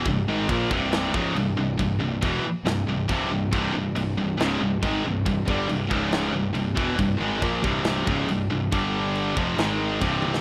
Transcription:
<<
  \new Staff \with { instrumentName = "Distorted electric guitar" } { \clef bass \time 4/4 \tempo 4 = 138 <c, g,>8 <aes, ees aes>8 <bes, f bes>8 <c, g, c>4 <des, aes, des>8 <c, g,>8 <c, g,>8 | <c, g,>8 <c, g,>8 <e, b, e>8 r8 <c, g,>8 <c, g,>8 <c, g, c>8 <c, g,>8 | <c, g, c>8 <c, g,>8 <c, g,>8 <c, g,>8 <des, aes, des>8 <c, g,>8 <aes, ees aes>8 <c, g,>8 | <c, g,>8 <g, d g>8 <c, g,>8 <des, aes, des>4 <c, g,>8 <c, g,>8 <e, b, e>8 |
<c, g,>8 <aes, ees aes>8 <bes, f bes>8 <c, g, c>4 <des, aes, des>8 <c, g,>8 <c, g,>8 | <g, d g>4. <f, c f>8 <aes, ees aes>4 <c, g, c>4 | }
  \new Staff \with { instrumentName = "Distorted electric guitar" } { \clef bass \time 4/4 <c, g,>8 <aes, ees aes>8 <bes, f bes>8 <c, g, c>4 <des, aes, des>8 <c, g,>8 <c, g,>8 | <c, g,>8 <c, g,>8 <e, b, e>8 r8 <c, g,>8 <c, g,>8 <c, g, c>8 <c, g,>8 | <c, g, c>8 <c, g,>8 <c, g,>8 <c, g,>8 <des, aes, des>8 <c, g,>8 <aes, ees aes>8 <c, g,>8 | <c, g,>8 <g, d g>8 <c, g,>8 <des, aes, des>4 <c, g,>8 <c, g,>8 <e, b, e>8 |
<c, g,>8 <aes, ees aes>8 <bes, f bes>8 <c, g, c>4 <des, aes, des>8 <c, g,>8 <c, g,>8 | <g, d g>4. <f, c f>8 <aes, ees aes>4 <c, g, c>4 | }
  \new Staff \with { instrumentName = "Distorted electric guitar" } { \clef bass \time 4/4 <c, g,>8 <aes, ees aes>8 <bes, f bes>8 <c, g, c>4 <des, aes, des>8 <c, g,>8 <c, g,>8 | <c, g,>8 <c, g,>8 <e, b, e>8 r8 <c, g,>8 <c, g,>8 <c, g, c>8 <c, g,>8 | <c, g, c>8 <c, g,>8 <c, g,>8 <c, g,>8 <des, aes, des>8 <c, g,>8 <aes, ees aes>8 <c, g,>8 | <c, g,>8 <g, d g>8 <c, g,>8 <des, aes, des>4 <c, g,>8 <c, g,>8 <e, b, e>8 |
<c, g,>8 <aes, ees aes>8 <bes, f bes>8 <c, g, c>4 <des, aes, des>8 <c, g,>8 <c, g,>8 | <g, d g>4. <f, c f>8 <aes, ees aes>4 <c, g, c>4 | }
  \new Staff \with { instrumentName = "Picked electric bass" } { \clef bass \time 4/4 c,,8 aes,,8 bes,,8 c,,4 des,,8 c,,8 c,,8 | c,,8 c,,8 e,,8 r8 c,,8 c,,8 c,,8 c,,8 | c,,8 c,,8 c,,8 c,,8 des,,8 c,,8 aes,,8 c,,8 | c,,8 g,,8 c,,8 des,,4 c,,8 c,,8 e,,8 |
c,,8 aes,,8 bes,,8 c,,4 des,,8 c,,8 c,,8 | g,,4. f,,8 aes,,4 c,,4 | }
  \new DrumStaff \with { instrumentName = "Drums" } \drummode { \time 4/4 <cymc bd>4 <cymc bd>8 bd8 <cymc sn>8 bd8 cymc4 | <cymc bd>4 <cymc bd>4 <cymc sn>4 <cymc bd>4 | <cymc bd>4 cymc4 <cymc sn>4 <cymc bd>4 | <cymc bd>8 bd8 cymc8 bd8 <cymc sn>4 cymc8 bd8 |
<cymc bd>4 <cymc bd>8 bd8 <cymc sn>8 bd8 cymc4 | <cymc bd>4 cymc8 bd8 <cymc sn>4 <cymc bd>8 tommh16 sn16 | }
>>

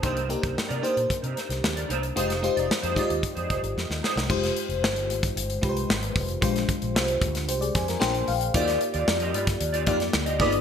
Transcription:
<<
  \new Staff \with { instrumentName = "Clean electric guitar" } { \time 4/4 \key f \dorian \tempo 4 = 113 <ees' bes' c''>8 r16 <ees' bes' c''>16 r16 <ees' bes' d''>16 <ees' bes' c''>16 r8 <ees' bes' c''>16 <ees' bes' c''>16 r8 <ees' bes' d''>16 <ees' bes' c''>16 r16 | <ees' aes' c''>8 r16 <ees' aes' d''>16 r16 <ees' aes' c''>16 <ees' aes' d''>16 r8 <ees' aes' c''>16 <ees' aes' c''>16 r8. <ees' aes' c''>16 r16 | r1 | r1 |
<f' g' d''>8 r16 <f' g' d''>16 r16 <f' g' ees''>16 <f' g' d''>16 r8 <f' g' d''>16 <f' g' d''>16 r8 <f' g' ees''>16 <ees' f' b'>16 r16 | }
  \new Staff \with { instrumentName = "FM electric piano" } { \time 4/4 \key f \dorian << { r1 | r1 | r1 | r2 <g' c''>16 <aes' d''>16 <g' c'' aes''>16 <f' bes'>16 g''8 f''8 |
r1 | } \\ { <bes d' ees' g' c''>8 <bes d' ees' g' bes'>8 r8 <bes d' ees' g' c''>4. r4 | <aes ees' f' g' c''>8 <aes ees' f' g' c''>8 r8 <aes ees' f' g' d'' ees''>4. r4 | <aes ees' f' g' c''>4. r4 <aes ees' f' g' b' c''>4 r8 | <aes d' f' g' c''>4. r4. <bes d' f' aes' c''>4 |
<bes ees' f' fis' g' d''>4. r4 <bes ees' f' g' d''>4 <bes b ees' f' aes' d''>8 | } >> }
  \new Staff \with { instrumentName = "Fretless electric bass" } { \clef bass \time 4/4 \key f \dorian c,8. c,16 r16 c16 r16 bes,16 r16 c16 r16 c,16 ees,8 c,8 | f,,8. f,,16 r16 f,16 r16 ees,16 r16 f,16 f,,16 aes,,16 f,16 ees,16 r16 c,16 | f,,8 r16 f,,16 g,,8 aes,,8 g,,8 c,8 aes,,8 f,,8 | bes,,8 r16 bes,,16 c,8 d,8 c,8 f,8 bes,,8 bes,,8 |
ees,8 r16 ees,16 f,8 g,8 ees,8 f,8 d,8 g,,8 | }
  \new DrumStaff \with { instrumentName = "Drums" } \drummode { \time 4/4 <hh bd>16 hh16 hh16 <hh bd>16 sn16 hh16 hh16 hh16 <hh bd>16 hh16 <hh sn>16 <hh sn>16 sn16 hh16 hh16 hh16 | hh16 <hh sn>16 hh16 hh16 sn16 hh16 <hh bd>16 hh16 <hh bd>16 hh16 <hh bd>16 hh16 sn16 sn16 sn16 sn16 | <cymc bd>16 <hh sn>16 hh16 hh16 sn16 hh16 hh16 <hh bd>16 hh16 hh16 <hh bd>16 hh16 sn16 hh16 <hho bd>16 hh16 | <hh bd>16 <hh sn>16 <hh bd>16 hh16 sn16 hh16 <hh bd>16 <hh sn>16 hh16 hh16 <hh bd sn>16 <hh sn>16 sn16 hh16 hho16 hh16 |
<hh bd>16 <hh sn>16 hh16 hh16 sn16 hh16 hh16 <hh bd sn>16 hh16 hh16 <hh bd>16 <hh sn>16 sn16 hh16 <hho bd>16 hh16 | }
>>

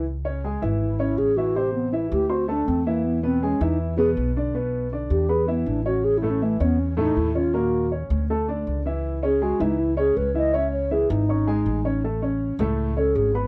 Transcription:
<<
  \new Staff \with { instrumentName = "Alto flute" } { \time 4/4 \key cis \minor \tempo 4 = 160 r2 e'4 gis'8 fis'8 | g'8 b8 e'8 g'8 fis'8 d'8 bis8 ais8 | b8 bis8 cis'8 dis'8 e'8 gis'8 r4 | r4. g'8 gis'8 b8 d'8 fis'8 |
\tuplet 3/2 { gis'8 e'8 cis'8 } a8 b8 cis'8 dis'8 e'8 eis'8 | fis'4 r2. | r8 gis'8 fis'8 dis'8 e'8 gis'8 b'8 dis''8 | e''8 cis''8 gis'8 dis'2~ dis'8 |
r2 r8 a'8 gis'8 r8 | }
  \new Staff \with { instrumentName = "Upright piano" } { \time 4/4 \key cis \minor r8 <cis cis' cis''>8 <gis gis' gis''>8 <e e' e''>4 <cis cis' cis''>4 <e e' e''>8 | <c c' c''>4 <e e' e''>4 <bis bis' bis''>8 <a a' a''>4 <e e' e''>8~ | <e e' e''>8 <b, b b'>8 <gis gis' gis''>8 <e e' e''>4 <b, b b'>4 <d d' d''>8 | <b, b b'>4 <d d' d''>4 <b b' b''>8 <e e' e''>4 <cis cis' cis''>8~ |
<cis cis' cis''>8 <a, a a'>8 <e e' e''>8 <cis cis' cis''>4 <a, a a'>4 <cis cis' cis''>8 | <ais, ais ais'>4 <cis cis' cis''>4 <a a' a''>8 <d d' d''>4 <e e' e''>8~ | <e e' e''>8 <cis cis' cis''>8 <gis gis' gis''>8 <e e' e''>4 <cis cis' cis''>4 <e e' e''>8 | <cis cis' cis''>4 <e e' e''>4 <cis' cis'' cis'''>8 <gis gis' gis''>4 <cis cis' cis''>8 |
<a a' a''>8 <cis cis' cis''>4 <a, a a'>4 <cis cis' cis''>4 <b b' b''>8 | }
  \new Staff \with { instrumentName = "Upright bass" } { \clef bass \time 4/4 \key cis \minor cis,4. gis,,4. a,,4~ | a,,4. d,4. e,4~ | e,4. e,4. b,,4~ | b,,4. e,4. a,,4~ |
a,,4. e,4. dis,4~ | dis,4. d,4. cis,4~ | cis,4. cis,4. cis,4~ | cis,4. gis,,4. a,,4~ |
a,,4. cis,4. gis,,4 | }
>>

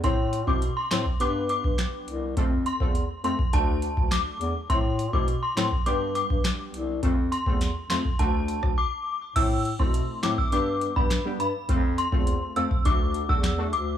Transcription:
<<
  \new Staff \with { instrumentName = "Synth bell" } { \time 4/4 \key a \minor \tempo 4 = 103 c'''16 r8 d'''16 r16 c'''16 c'''16 r16 d'''16 r16 d'''16 r4 r16 | r8 c'''16 r8. c'''16 r16 a''8. r16 d'''8. r16 | c'''16 r8 d'''16 r16 c'''16 c'''16 r16 d'''16 r16 d'''16 r4 r16 | r8 c'''16 r8. c'''16 r16 a''8. r16 d'''8. r16 |
e'''16 r8 c'''16 r8 d'''16 e'''16 d'''16 r8 b''16 r8 b''16 r16 | r8 c'''16 r8. e'''16 r16 d'''16 r8 e'''16 r8 d'''16 r16 | }
  \new Staff \with { instrumentName = "Synth stab" } { \time 4/4 \key a \minor <c' e' a' c''>16 r8 <c' e' a' c''>16 r8 <c' e' a' c''>16 r16 <b d' g' b'>4.~ <b d' g' b'>16 r16 | <a c' f' a'>16 r8 <a c' f' a'>16 r8 <a c' f' a'>16 r16 <a d' fis' a'>4.~ <a d' fis' a'>16 r16 | <a c' e' a'>16 r8 <a c' e' a'>16 r8 <a c' e' a'>16 r16 <g b d' g'>4.~ <g b d' g'>16 r16 | <a c' f' a'>16 r8 <a c' f' a'>16 r8 <a c' f' a'>16 r16 <a d' fis' a'>4 r4 |
<a c' e' a'>16 r8 <a c' e' a'>8. <a c' e' a'>8 <g b d' g'>8. <g b d' g'>16 r16 <g b d' g'>16 r8 | <a c' f' a'>16 r8 <a c' f' a'>8. <a c' f' a'>8 <a d' fis' a'>8. <a d' fis' a'>16 r16 <a d' fis' a'>16 r8 | }
  \new Staff \with { instrumentName = "Bass clarinet" } { \clef bass \time 4/4 \key a \minor a,8. b,8 r16 a,16 r16 g,8. g,16 r8 c,8 | f,8. e,8 r16 f,16 r16 d,8. d,8 r16 e,16 r16 | a,8. b,8 r16 a,16 r16 g,8. g,16 r8 c,8 | f,8. e,8 r16 f,16 r16 d,8. d,16 r4 |
a,8. b,8 r16 a,16 r16 g,8. g,8 r16 g,16 r16 | f,8. e,8 r16 f,16 r16 d,8. e,8. d,8 | }
  \new DrumStaff \with { instrumentName = "Drums" } \drummode { \time 4/4 <hh bd>8 hh16 bd16 hh8 <hc hh sn>16 bd16 hh8 hh16 bd16 <hc hh sn>8 hh8 | <hh bd>8 hh16 bd16 hh8 hh16 bd16 <hh bd>8 hh16 bd16 <hc hh sn>8 hh8 | <hh bd>8 hh16 bd16 hh8 <hc hh sn>16 bd16 hh8 hh16 bd16 <hc hh sn>8 hh8 | <hh bd>8 hh16 bd16 <hh sn>8 <hc hh sn>16 bd16 <hh bd>8 hh16 <bd ss>16 r4 |
<cymc hh bd>8 hh16 bd16 hh8 <hc hh sn>16 bd16 hh8 hh16 bd16 <hc hh sn>8 hh8 | <hh bd>8 hh16 bd16 hh8 hh16 bd16 <hh bd>8 hh16 bd16 <hc hh sn>8 hh8 | }
>>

